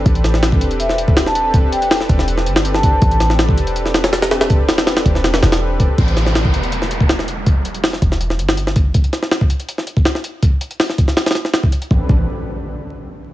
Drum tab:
HH |x-x-x---x---x-x-x---x---x---x---|x---x-x-o---x---x---x---x---x---|x-x-x---x---x-x-x---x-x-x-x-x-x-|x---x-x-x-x-x---x-x-x-x-----x---|
SD |----o-o-o---------o-----o-o-----|--------o-o---o---o---o---o-----|----o-o-o---------o-o-o-o-o-o-o-|----o-o-o-o---o-o-o-o-o---------|
BD |o---------o-----------o---------|o-----------o---------------o---|o---------o---------------------|o-----------o---------------o---|

HH |x-x-x---x---x-x-x---x---x---x---|x---x-x-o---x---x---x---x---x---|x-x-x---x---x-x-x---x---x---x---|x---x-x-o---x---x-xxx---x---x-x-|
SD |----o-o-o---------o-----o-o-----|--------o-o---o---o---o---o-----|----o-o-o---------o-----o-o-----|--------o-o---o-o-ooo-o-o-------|
BD |o---------o-----------o---------|o-----------o---------------o---|o---------o-----------o---------|o-----------o-------------o-----|

HH |--------------------------------|
SD |--------------------------------|
BD |o---o---------------------------|